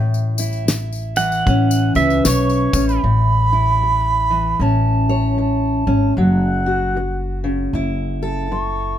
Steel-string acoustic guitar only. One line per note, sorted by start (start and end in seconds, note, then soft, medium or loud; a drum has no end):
0.00 0.67 A2 medium
0.00 0.39 E4 medium
0.39 3.51 E4 medium
0.68 muted steel-string acoustic guitar stroke medium
1.17 2.24 E3 medium
1.48 2.73 C#4 medium
1.96 3.00 B4 medium
2.25 muted steel-string acoustic guitar stroke medium
2.74 3.00 C#4 medium
3.04 3.81 A2 medium
3.53 6.66 E4 soft
3.83 muted steel-string acoustic guitar stroke medium
4.31 5.38 E3 medium
4.61 5.86 C#4 medium
5.09 6.14 C#5 medium
5.38 muted steel-string acoustic guitar stroke medium
5.87 6.13 C#4 soft
6.18 6.96 F#3 medium
6.66 8.98 F#4 medium
6.96 muted steel-string acoustic guitar stroke medium
7.44 8.50 C#3 medium
7.75 8.98 E4 medium
8.23 8.98 A4 medium
8.52 muted steel-string acoustic guitar stroke medium